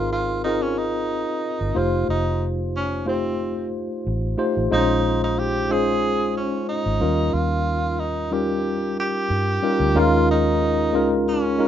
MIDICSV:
0, 0, Header, 1, 4, 480
1, 0, Start_track
1, 0, Tempo, 655738
1, 1528, Time_signature, 4, 2, 24, 8
1, 8549, End_track
2, 0, Start_track
2, 0, Title_t, "Tenor saxophone"
2, 0, Program_c, 0, 66
2, 91, Note_on_c, 0, 65, 86
2, 312, Note_off_c, 0, 65, 0
2, 322, Note_on_c, 0, 63, 93
2, 455, Note_on_c, 0, 61, 80
2, 466, Note_off_c, 0, 63, 0
2, 571, Note_on_c, 0, 63, 81
2, 582, Note_off_c, 0, 61, 0
2, 1302, Note_on_c, 0, 65, 89
2, 1313, Note_off_c, 0, 63, 0
2, 1532, Note_off_c, 0, 65, 0
2, 1537, Note_on_c, 0, 63, 89
2, 1797, Note_off_c, 0, 63, 0
2, 2024, Note_on_c, 0, 61, 83
2, 2240, Note_off_c, 0, 61, 0
2, 2260, Note_on_c, 0, 60, 75
2, 2706, Note_off_c, 0, 60, 0
2, 3464, Note_on_c, 0, 63, 96
2, 3802, Note_off_c, 0, 63, 0
2, 3835, Note_on_c, 0, 63, 86
2, 3942, Note_on_c, 0, 67, 99
2, 3953, Note_off_c, 0, 63, 0
2, 4187, Note_on_c, 0, 68, 115
2, 4198, Note_off_c, 0, 67, 0
2, 4657, Note_off_c, 0, 68, 0
2, 4662, Note_on_c, 0, 61, 77
2, 4880, Note_off_c, 0, 61, 0
2, 4895, Note_on_c, 0, 63, 88
2, 5371, Note_on_c, 0, 65, 88
2, 5382, Note_off_c, 0, 63, 0
2, 5855, Note_on_c, 0, 63, 79
2, 5866, Note_off_c, 0, 65, 0
2, 6097, Note_on_c, 0, 67, 84
2, 6108, Note_off_c, 0, 63, 0
2, 6573, Note_off_c, 0, 67, 0
2, 6585, Note_on_c, 0, 67, 97
2, 7312, Note_on_c, 0, 65, 108
2, 7323, Note_off_c, 0, 67, 0
2, 7539, Note_off_c, 0, 65, 0
2, 7545, Note_on_c, 0, 63, 96
2, 8223, Note_off_c, 0, 63, 0
2, 8260, Note_on_c, 0, 61, 89
2, 8549, Note_off_c, 0, 61, 0
2, 8549, End_track
3, 0, Start_track
3, 0, Title_t, "Tine electric piano"
3, 0, Program_c, 1, 4
3, 0, Control_c, 1, 64, 127
3, 0, Note_on_c, 1, 60, 84
3, 0, Note_on_c, 1, 63, 78
3, 0, Note_on_c, 1, 65, 70
3, 0, Note_on_c, 1, 68, 68
3, 0, Note_on_c, 1, 70, 95
3, 159, Note_off_c, 1, 60, 0
3, 161, Note_off_c, 1, 63, 0
3, 164, Note_off_c, 1, 65, 0
3, 165, Note_off_c, 1, 68, 0
3, 167, Note_off_c, 1, 70, 0
3, 329, Note_on_c, 1, 60, 66
3, 329, Note_on_c, 1, 63, 61
3, 333, Note_on_c, 1, 65, 61
3, 337, Note_on_c, 1, 68, 60
3, 339, Note_on_c, 1, 70, 70
3, 1059, Note_off_c, 1, 60, 0
3, 1059, Note_off_c, 1, 63, 0
3, 1061, Note_off_c, 1, 65, 0
3, 1063, Note_off_c, 1, 68, 0
3, 1064, Note_off_c, 1, 70, 0
3, 1278, Note_on_c, 1, 57, 64
3, 1280, Note_on_c, 1, 63, 59
3, 1282, Note_on_c, 1, 65, 65
3, 1290, Note_on_c, 1, 67, 60
3, 1291, Note_on_c, 1, 72, 76
3, 1296, Control_c, 1, 64, 0
3, 1427, Control_c, 1, 64, 127
3, 2056, Note_off_c, 1, 57, 0
3, 2057, Note_off_c, 1, 63, 0
3, 2058, Note_off_c, 1, 65, 0
3, 2062, Note_off_c, 1, 67, 0
3, 2062, Note_off_c, 1, 72, 0
3, 2239, Note_on_c, 1, 57, 63
3, 2242, Note_on_c, 1, 65, 60
3, 2243, Note_on_c, 1, 63, 57
3, 2249, Note_on_c, 1, 67, 60
3, 2251, Note_on_c, 1, 72, 68
3, 2976, Note_off_c, 1, 57, 0
3, 2977, Note_off_c, 1, 65, 0
3, 2978, Note_off_c, 1, 63, 0
3, 2981, Note_off_c, 1, 67, 0
3, 2982, Note_off_c, 1, 72, 0
3, 3202, Note_on_c, 1, 57, 76
3, 3206, Note_on_c, 1, 63, 65
3, 3207, Note_on_c, 1, 65, 67
3, 3208, Note_on_c, 1, 67, 67
3, 3213, Note_on_c, 1, 72, 87
3, 3394, Note_off_c, 1, 57, 0
3, 3396, Note_off_c, 1, 63, 0
3, 3396, Note_off_c, 1, 65, 0
3, 3396, Note_off_c, 1, 67, 0
3, 3399, Note_off_c, 1, 72, 0
3, 3446, Note_on_c, 1, 56, 89
3, 3450, Note_on_c, 1, 60, 60
3, 3452, Note_on_c, 1, 63, 80
3, 3456, Note_on_c, 1, 65, 78
3, 3458, Note_on_c, 1, 72, 96
3, 3459, Control_c, 1, 64, 0
3, 3495, Note_on_c, 1, 61, 78
3, 3502, Note_off_c, 1, 60, 0
3, 3581, Control_c, 1, 64, 127
3, 4002, Note_off_c, 1, 56, 0
3, 4005, Note_off_c, 1, 63, 0
3, 4007, Note_off_c, 1, 65, 0
3, 4008, Note_off_c, 1, 72, 0
3, 4026, Note_off_c, 1, 61, 0
3, 4166, Note_on_c, 1, 56, 70
3, 4174, Note_on_c, 1, 61, 63
3, 4175, Note_on_c, 1, 63, 62
3, 4176, Note_on_c, 1, 65, 63
3, 4180, Note_on_c, 1, 72, 80
3, 4900, Note_off_c, 1, 56, 0
3, 4904, Note_off_c, 1, 61, 0
3, 4904, Note_off_c, 1, 63, 0
3, 4905, Note_off_c, 1, 65, 0
3, 4907, Note_off_c, 1, 72, 0
3, 5126, Note_on_c, 1, 55, 69
3, 5130, Note_on_c, 1, 61, 60
3, 5131, Note_on_c, 1, 63, 60
3, 5132, Note_on_c, 1, 65, 63
3, 5135, Note_on_c, 1, 70, 75
3, 5141, Control_c, 1, 64, 0
3, 5269, Control_c, 1, 64, 127
3, 5900, Note_off_c, 1, 55, 0
3, 5902, Note_off_c, 1, 61, 0
3, 5902, Note_off_c, 1, 63, 0
3, 5903, Note_off_c, 1, 65, 0
3, 5904, Note_off_c, 1, 70, 0
3, 6085, Note_on_c, 1, 55, 68
3, 6087, Note_on_c, 1, 61, 62
3, 6090, Note_on_c, 1, 63, 59
3, 6092, Note_on_c, 1, 65, 55
3, 6097, Note_on_c, 1, 70, 70
3, 6817, Note_off_c, 1, 55, 0
3, 6818, Note_off_c, 1, 61, 0
3, 6819, Note_off_c, 1, 63, 0
3, 6820, Note_off_c, 1, 65, 0
3, 6823, Note_off_c, 1, 70, 0
3, 7044, Note_on_c, 1, 55, 75
3, 7047, Note_on_c, 1, 61, 68
3, 7050, Note_on_c, 1, 63, 64
3, 7052, Note_on_c, 1, 65, 65
3, 7053, Note_on_c, 1, 70, 79
3, 7232, Note_off_c, 1, 55, 0
3, 7234, Note_off_c, 1, 61, 0
3, 7235, Note_off_c, 1, 63, 0
3, 7236, Note_off_c, 1, 65, 0
3, 7237, Note_off_c, 1, 70, 0
3, 7282, Note_on_c, 1, 56, 88
3, 7287, Note_on_c, 1, 61, 80
3, 7289, Note_on_c, 1, 63, 85
3, 7290, Note_on_c, 1, 65, 89
3, 7294, Note_on_c, 1, 70, 100
3, 7297, Control_c, 1, 64, 0
3, 7430, Control_c, 1, 64, 127
3, 7835, Note_off_c, 1, 56, 0
3, 7837, Note_off_c, 1, 61, 0
3, 7838, Note_off_c, 1, 63, 0
3, 7839, Note_off_c, 1, 65, 0
3, 7841, Note_off_c, 1, 70, 0
3, 8001, Note_on_c, 1, 56, 74
3, 8004, Note_on_c, 1, 61, 67
3, 8008, Note_on_c, 1, 63, 63
3, 8012, Note_on_c, 1, 65, 68
3, 8018, Note_on_c, 1, 70, 81
3, 8375, Note_off_c, 1, 56, 0
3, 8376, Note_off_c, 1, 61, 0
3, 8378, Note_off_c, 1, 63, 0
3, 8380, Note_off_c, 1, 65, 0
3, 8383, Note_off_c, 1, 70, 0
3, 8480, Note_on_c, 1, 56, 69
3, 8482, Note_on_c, 1, 61, 69
3, 8484, Note_on_c, 1, 63, 66
3, 8490, Note_on_c, 1, 65, 62
3, 8493, Note_on_c, 1, 70, 82
3, 8549, Note_off_c, 1, 56, 0
3, 8549, Note_off_c, 1, 61, 0
3, 8549, Note_off_c, 1, 63, 0
3, 8549, Note_off_c, 1, 65, 0
3, 8549, Note_off_c, 1, 70, 0
3, 8549, End_track
4, 0, Start_track
4, 0, Title_t, "Fingered electric bass"
4, 0, Program_c, 2, 33
4, 0, Note_on_c, 2, 32, 86
4, 904, Note_off_c, 2, 32, 0
4, 1176, Note_on_c, 2, 31, 75
4, 1269, Note_off_c, 2, 31, 0
4, 1289, Note_on_c, 2, 29, 80
4, 1490, Note_off_c, 2, 29, 0
4, 1527, Note_on_c, 2, 29, 80
4, 2830, Note_off_c, 2, 29, 0
4, 2976, Note_on_c, 2, 33, 94
4, 3176, Note_off_c, 2, 33, 0
4, 3345, Note_on_c, 2, 33, 73
4, 3436, Note_off_c, 2, 33, 0
4, 3458, Note_on_c, 2, 34, 90
4, 4756, Note_off_c, 2, 34, 0
4, 5021, Note_on_c, 2, 32, 73
4, 5114, Note_off_c, 2, 32, 0
4, 5136, Note_on_c, 2, 39, 89
4, 5336, Note_off_c, 2, 39, 0
4, 5372, Note_on_c, 2, 39, 86
4, 6670, Note_off_c, 2, 39, 0
4, 6808, Note_on_c, 2, 43, 89
4, 7010, Note_off_c, 2, 43, 0
4, 7173, Note_on_c, 2, 38, 78
4, 7267, Note_off_c, 2, 38, 0
4, 7282, Note_on_c, 2, 39, 92
4, 8005, Note_off_c, 2, 39, 0
4, 8005, Note_on_c, 2, 37, 91
4, 8549, Note_off_c, 2, 37, 0
4, 8549, End_track
0, 0, End_of_file